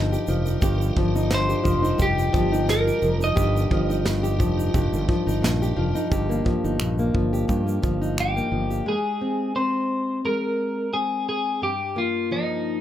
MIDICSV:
0, 0, Header, 1, 6, 480
1, 0, Start_track
1, 0, Tempo, 688073
1, 434, Time_signature, 4, 2, 24, 8
1, 8935, End_track
2, 0, Start_track
2, 0, Title_t, "Clean electric guitar"
2, 0, Program_c, 0, 27
2, 938, Note_on_c, 0, 72, 89
2, 1409, Note_on_c, 0, 67, 84
2, 1418, Note_off_c, 0, 72, 0
2, 1882, Note_off_c, 0, 67, 0
2, 1885, Note_on_c, 0, 70, 82
2, 2224, Note_off_c, 0, 70, 0
2, 2259, Note_on_c, 0, 75, 91
2, 3660, Note_off_c, 0, 75, 0
2, 5723, Note_on_c, 0, 67, 73
2, 6195, Note_off_c, 0, 67, 0
2, 6198, Note_on_c, 0, 68, 69
2, 6665, Note_off_c, 0, 68, 0
2, 6668, Note_on_c, 0, 72, 66
2, 7120, Note_off_c, 0, 72, 0
2, 7154, Note_on_c, 0, 70, 69
2, 7626, Note_off_c, 0, 70, 0
2, 7628, Note_on_c, 0, 68, 68
2, 7867, Note_off_c, 0, 68, 0
2, 7875, Note_on_c, 0, 68, 69
2, 8112, Note_off_c, 0, 68, 0
2, 8115, Note_on_c, 0, 67, 72
2, 8358, Note_on_c, 0, 65, 64
2, 8359, Note_off_c, 0, 67, 0
2, 8578, Note_off_c, 0, 65, 0
2, 8596, Note_on_c, 0, 63, 70
2, 8935, Note_off_c, 0, 63, 0
2, 8935, End_track
3, 0, Start_track
3, 0, Title_t, "Tonewheel organ"
3, 0, Program_c, 1, 16
3, 0, Note_on_c, 1, 55, 58
3, 0, Note_on_c, 1, 63, 54
3, 0, Note_on_c, 1, 65, 55
3, 0, Note_on_c, 1, 70, 66
3, 4240, Note_off_c, 1, 55, 0
3, 4242, Note_off_c, 1, 63, 0
3, 4242, Note_off_c, 1, 65, 0
3, 4242, Note_off_c, 1, 70, 0
3, 8935, End_track
4, 0, Start_track
4, 0, Title_t, "Steel-string acoustic guitar"
4, 0, Program_c, 2, 25
4, 0, Note_on_c, 2, 43, 78
4, 0, Note_on_c, 2, 53, 67
4, 0, Note_on_c, 2, 63, 57
4, 0, Note_on_c, 2, 67, 68
4, 84, Note_off_c, 2, 67, 0
4, 87, Note_on_c, 2, 67, 63
4, 195, Note_off_c, 2, 53, 0
4, 198, Note_on_c, 2, 53, 64
4, 326, Note_off_c, 2, 63, 0
4, 329, Note_on_c, 2, 63, 57
4, 430, Note_off_c, 2, 43, 0
4, 437, Note_off_c, 2, 67, 0
4, 437, Note_on_c, 2, 43, 84
4, 440, Note_on_c, 2, 67, 68
4, 677, Note_off_c, 2, 53, 0
4, 680, Note_on_c, 2, 53, 68
4, 805, Note_off_c, 2, 63, 0
4, 808, Note_on_c, 2, 63, 61
4, 906, Note_off_c, 2, 43, 0
4, 914, Note_on_c, 2, 43, 79
4, 1038, Note_off_c, 2, 67, 0
4, 1041, Note_on_c, 2, 67, 63
4, 1138, Note_off_c, 2, 53, 0
4, 1141, Note_on_c, 2, 53, 63
4, 1270, Note_off_c, 2, 63, 0
4, 1273, Note_on_c, 2, 63, 59
4, 1374, Note_off_c, 2, 43, 0
4, 1382, Note_on_c, 2, 43, 86
4, 1384, Note_off_c, 2, 67, 0
4, 1387, Note_on_c, 2, 67, 69
4, 1620, Note_off_c, 2, 53, 0
4, 1623, Note_on_c, 2, 53, 61
4, 1755, Note_off_c, 2, 63, 0
4, 1757, Note_on_c, 2, 63, 57
4, 1854, Note_off_c, 2, 43, 0
4, 1862, Note_on_c, 2, 43, 74
4, 1998, Note_off_c, 2, 67, 0
4, 2001, Note_on_c, 2, 67, 62
4, 2102, Note_off_c, 2, 53, 0
4, 2105, Note_on_c, 2, 53, 66
4, 2234, Note_off_c, 2, 63, 0
4, 2237, Note_on_c, 2, 63, 58
4, 2331, Note_off_c, 2, 43, 0
4, 2339, Note_on_c, 2, 43, 85
4, 2341, Note_off_c, 2, 67, 0
4, 2343, Note_on_c, 2, 67, 69
4, 2584, Note_off_c, 2, 53, 0
4, 2587, Note_on_c, 2, 53, 71
4, 2718, Note_off_c, 2, 63, 0
4, 2721, Note_on_c, 2, 63, 57
4, 2820, Note_off_c, 2, 43, 0
4, 2828, Note_on_c, 2, 43, 77
4, 2949, Note_off_c, 2, 67, 0
4, 2952, Note_on_c, 2, 67, 60
4, 3061, Note_off_c, 2, 53, 0
4, 3064, Note_on_c, 2, 53, 64
4, 3187, Note_off_c, 2, 63, 0
4, 3190, Note_on_c, 2, 63, 58
4, 3300, Note_off_c, 2, 43, 0
4, 3307, Note_on_c, 2, 43, 80
4, 3309, Note_off_c, 2, 67, 0
4, 3312, Note_on_c, 2, 67, 71
4, 3543, Note_off_c, 2, 53, 0
4, 3546, Note_on_c, 2, 53, 64
4, 3673, Note_off_c, 2, 63, 0
4, 3676, Note_on_c, 2, 63, 59
4, 3775, Note_off_c, 2, 43, 0
4, 3783, Note_on_c, 2, 43, 75
4, 3919, Note_off_c, 2, 67, 0
4, 3922, Note_on_c, 2, 67, 62
4, 4019, Note_off_c, 2, 53, 0
4, 4022, Note_on_c, 2, 53, 65
4, 4149, Note_off_c, 2, 63, 0
4, 4152, Note_on_c, 2, 63, 55
4, 4256, Note_off_c, 2, 43, 0
4, 4265, Note_on_c, 2, 43, 76
4, 4266, Note_off_c, 2, 67, 0
4, 4269, Note_on_c, 2, 67, 66
4, 4390, Note_on_c, 2, 58, 54
4, 4496, Note_off_c, 2, 53, 0
4, 4499, Note_on_c, 2, 53, 64
4, 4520, Note_off_c, 2, 63, 0
4, 4635, Note_on_c, 2, 63, 55
4, 4738, Note_off_c, 2, 43, 0
4, 4746, Note_on_c, 2, 43, 75
4, 4869, Note_off_c, 2, 58, 0
4, 4877, Note_on_c, 2, 58, 50
4, 4974, Note_off_c, 2, 53, 0
4, 4982, Note_on_c, 2, 53, 61
4, 5111, Note_off_c, 2, 67, 0
4, 5113, Note_on_c, 2, 67, 60
4, 5209, Note_off_c, 2, 43, 0
4, 5217, Note_on_c, 2, 43, 73
4, 5220, Note_off_c, 2, 67, 0
4, 5223, Note_on_c, 2, 67, 63
4, 5339, Note_off_c, 2, 58, 0
4, 5348, Note_on_c, 2, 58, 52
4, 5450, Note_off_c, 2, 53, 0
4, 5458, Note_on_c, 2, 53, 59
4, 5588, Note_off_c, 2, 63, 0
4, 5591, Note_on_c, 2, 63, 55
4, 5693, Note_off_c, 2, 43, 0
4, 5702, Note_on_c, 2, 43, 71
4, 5825, Note_off_c, 2, 58, 0
4, 5833, Note_on_c, 2, 58, 52
4, 5932, Note_off_c, 2, 53, 0
4, 5940, Note_on_c, 2, 53, 58
4, 6070, Note_off_c, 2, 67, 0
4, 6073, Note_on_c, 2, 67, 55
4, 6179, Note_off_c, 2, 53, 0
4, 6182, Note_on_c, 2, 56, 67
4, 6237, Note_off_c, 2, 43, 0
4, 6237, Note_off_c, 2, 58, 0
4, 6428, Note_on_c, 2, 60, 50
4, 6659, Note_off_c, 2, 60, 0
4, 6668, Note_on_c, 2, 60, 57
4, 7142, Note_off_c, 2, 56, 0
4, 7150, Note_on_c, 2, 56, 64
4, 7171, Note_off_c, 2, 67, 0
4, 7615, Note_off_c, 2, 60, 0
4, 7624, Note_on_c, 2, 60, 50
4, 8033, Note_off_c, 2, 63, 0
4, 8104, Note_on_c, 2, 43, 65
4, 8160, Note_off_c, 2, 60, 0
4, 8163, Note_off_c, 2, 56, 0
4, 8343, Note_on_c, 2, 58, 50
4, 8589, Note_on_c, 2, 53, 55
4, 8935, Note_off_c, 2, 43, 0
4, 8935, Note_off_c, 2, 53, 0
4, 8935, Note_off_c, 2, 58, 0
4, 8935, End_track
5, 0, Start_track
5, 0, Title_t, "Fretless electric bass"
5, 0, Program_c, 3, 35
5, 0, Note_on_c, 3, 31, 92
5, 110, Note_off_c, 3, 31, 0
5, 197, Note_on_c, 3, 29, 89
5, 392, Note_off_c, 3, 29, 0
5, 435, Note_on_c, 3, 31, 102
5, 631, Note_off_c, 3, 31, 0
5, 675, Note_on_c, 3, 31, 87
5, 1067, Note_off_c, 3, 31, 0
5, 1156, Note_on_c, 3, 29, 82
5, 1351, Note_off_c, 3, 29, 0
5, 1392, Note_on_c, 3, 29, 90
5, 1588, Note_off_c, 3, 29, 0
5, 1632, Note_on_c, 3, 31, 92
5, 2025, Note_off_c, 3, 31, 0
5, 2108, Note_on_c, 3, 29, 90
5, 2305, Note_off_c, 3, 29, 0
5, 2351, Note_on_c, 3, 31, 98
5, 2547, Note_off_c, 3, 31, 0
5, 2589, Note_on_c, 3, 31, 91
5, 3070, Note_off_c, 3, 31, 0
5, 3070, Note_on_c, 3, 29, 83
5, 3266, Note_off_c, 3, 29, 0
5, 3309, Note_on_c, 3, 29, 87
5, 3416, Note_off_c, 3, 29, 0
5, 3435, Note_on_c, 3, 31, 79
5, 3525, Note_off_c, 3, 31, 0
5, 3676, Note_on_c, 3, 31, 83
5, 3766, Note_off_c, 3, 31, 0
5, 3783, Note_on_c, 3, 34, 83
5, 3981, Note_off_c, 3, 34, 0
5, 4025, Note_on_c, 3, 29, 83
5, 4134, Note_off_c, 3, 29, 0
5, 4267, Note_on_c, 3, 31, 88
5, 4463, Note_off_c, 3, 31, 0
5, 4634, Note_on_c, 3, 31, 81
5, 4724, Note_off_c, 3, 31, 0
5, 4746, Note_on_c, 3, 34, 81
5, 4943, Note_off_c, 3, 34, 0
5, 4985, Note_on_c, 3, 31, 70
5, 5182, Note_off_c, 3, 31, 0
5, 5228, Note_on_c, 3, 43, 89
5, 5424, Note_off_c, 3, 43, 0
5, 5466, Note_on_c, 3, 31, 80
5, 5860, Note_off_c, 3, 31, 0
5, 5942, Note_on_c, 3, 31, 79
5, 6141, Note_off_c, 3, 31, 0
5, 8935, End_track
6, 0, Start_track
6, 0, Title_t, "Drums"
6, 93, Note_on_c, 9, 82, 47
6, 163, Note_off_c, 9, 82, 0
6, 190, Note_on_c, 9, 82, 49
6, 260, Note_off_c, 9, 82, 0
6, 322, Note_on_c, 9, 82, 45
6, 391, Note_off_c, 9, 82, 0
6, 432, Note_on_c, 9, 82, 76
6, 433, Note_on_c, 9, 36, 104
6, 502, Note_off_c, 9, 82, 0
6, 503, Note_off_c, 9, 36, 0
6, 569, Note_on_c, 9, 82, 58
6, 639, Note_off_c, 9, 82, 0
6, 674, Note_on_c, 9, 36, 88
6, 743, Note_off_c, 9, 36, 0
6, 807, Note_on_c, 9, 82, 48
6, 877, Note_off_c, 9, 82, 0
6, 911, Note_on_c, 9, 38, 98
6, 914, Note_on_c, 9, 82, 64
6, 980, Note_off_c, 9, 38, 0
6, 984, Note_off_c, 9, 82, 0
6, 1044, Note_on_c, 9, 82, 47
6, 1114, Note_off_c, 9, 82, 0
6, 1153, Note_on_c, 9, 36, 86
6, 1155, Note_on_c, 9, 82, 56
6, 1223, Note_off_c, 9, 36, 0
6, 1225, Note_off_c, 9, 82, 0
6, 1288, Note_on_c, 9, 82, 57
6, 1358, Note_off_c, 9, 82, 0
6, 1389, Note_on_c, 9, 82, 68
6, 1392, Note_on_c, 9, 36, 90
6, 1458, Note_off_c, 9, 82, 0
6, 1462, Note_off_c, 9, 36, 0
6, 1525, Note_on_c, 9, 82, 48
6, 1594, Note_off_c, 9, 82, 0
6, 1632, Note_on_c, 9, 82, 44
6, 1633, Note_on_c, 9, 36, 91
6, 1702, Note_off_c, 9, 82, 0
6, 1703, Note_off_c, 9, 36, 0
6, 1769, Note_on_c, 9, 82, 50
6, 1839, Note_off_c, 9, 82, 0
6, 1876, Note_on_c, 9, 38, 104
6, 1879, Note_on_c, 9, 82, 72
6, 1946, Note_off_c, 9, 38, 0
6, 1949, Note_off_c, 9, 82, 0
6, 2008, Note_on_c, 9, 82, 47
6, 2078, Note_off_c, 9, 82, 0
6, 2109, Note_on_c, 9, 82, 50
6, 2178, Note_off_c, 9, 82, 0
6, 2240, Note_on_c, 9, 82, 49
6, 2310, Note_off_c, 9, 82, 0
6, 2351, Note_on_c, 9, 36, 101
6, 2352, Note_on_c, 9, 82, 76
6, 2420, Note_off_c, 9, 36, 0
6, 2422, Note_off_c, 9, 82, 0
6, 2489, Note_on_c, 9, 82, 56
6, 2559, Note_off_c, 9, 82, 0
6, 2589, Note_on_c, 9, 36, 87
6, 2659, Note_off_c, 9, 36, 0
6, 2724, Note_on_c, 9, 82, 48
6, 2794, Note_off_c, 9, 82, 0
6, 2829, Note_on_c, 9, 38, 100
6, 2833, Note_on_c, 9, 82, 67
6, 2899, Note_off_c, 9, 38, 0
6, 2902, Note_off_c, 9, 82, 0
6, 2960, Note_on_c, 9, 82, 50
6, 3030, Note_off_c, 9, 82, 0
6, 3069, Note_on_c, 9, 36, 85
6, 3071, Note_on_c, 9, 82, 55
6, 3139, Note_off_c, 9, 36, 0
6, 3141, Note_off_c, 9, 82, 0
6, 3206, Note_on_c, 9, 82, 54
6, 3276, Note_off_c, 9, 82, 0
6, 3309, Note_on_c, 9, 36, 90
6, 3311, Note_on_c, 9, 82, 70
6, 3378, Note_off_c, 9, 36, 0
6, 3381, Note_off_c, 9, 82, 0
6, 3443, Note_on_c, 9, 82, 49
6, 3513, Note_off_c, 9, 82, 0
6, 3549, Note_on_c, 9, 36, 93
6, 3619, Note_off_c, 9, 36, 0
6, 3686, Note_on_c, 9, 82, 52
6, 3756, Note_off_c, 9, 82, 0
6, 3796, Note_on_c, 9, 38, 101
6, 3798, Note_on_c, 9, 82, 71
6, 3866, Note_off_c, 9, 38, 0
6, 3868, Note_off_c, 9, 82, 0
6, 3925, Note_on_c, 9, 82, 44
6, 3995, Note_off_c, 9, 82, 0
6, 4157, Note_on_c, 9, 82, 46
6, 4227, Note_off_c, 9, 82, 0
6, 4267, Note_on_c, 9, 36, 94
6, 4268, Note_on_c, 9, 82, 72
6, 4336, Note_off_c, 9, 36, 0
6, 4338, Note_off_c, 9, 82, 0
6, 4405, Note_on_c, 9, 82, 52
6, 4475, Note_off_c, 9, 82, 0
6, 4506, Note_on_c, 9, 36, 84
6, 4576, Note_off_c, 9, 36, 0
6, 4639, Note_on_c, 9, 82, 42
6, 4709, Note_off_c, 9, 82, 0
6, 4741, Note_on_c, 9, 26, 97
6, 4745, Note_on_c, 9, 82, 60
6, 4811, Note_off_c, 9, 26, 0
6, 4815, Note_off_c, 9, 82, 0
6, 4873, Note_on_c, 9, 82, 46
6, 4942, Note_off_c, 9, 82, 0
6, 4985, Note_on_c, 9, 36, 83
6, 5055, Note_off_c, 9, 36, 0
6, 5121, Note_on_c, 9, 82, 50
6, 5191, Note_off_c, 9, 82, 0
6, 5226, Note_on_c, 9, 36, 84
6, 5226, Note_on_c, 9, 82, 64
6, 5295, Note_off_c, 9, 36, 0
6, 5296, Note_off_c, 9, 82, 0
6, 5358, Note_on_c, 9, 82, 47
6, 5427, Note_off_c, 9, 82, 0
6, 5463, Note_on_c, 9, 82, 43
6, 5466, Note_on_c, 9, 36, 88
6, 5533, Note_off_c, 9, 82, 0
6, 5535, Note_off_c, 9, 36, 0
6, 5601, Note_on_c, 9, 82, 43
6, 5671, Note_off_c, 9, 82, 0
6, 5707, Note_on_c, 9, 26, 91
6, 5709, Note_on_c, 9, 82, 64
6, 5776, Note_off_c, 9, 26, 0
6, 5779, Note_off_c, 9, 82, 0
6, 5841, Note_on_c, 9, 82, 42
6, 5911, Note_off_c, 9, 82, 0
6, 6076, Note_on_c, 9, 82, 41
6, 6146, Note_off_c, 9, 82, 0
6, 8935, End_track
0, 0, End_of_file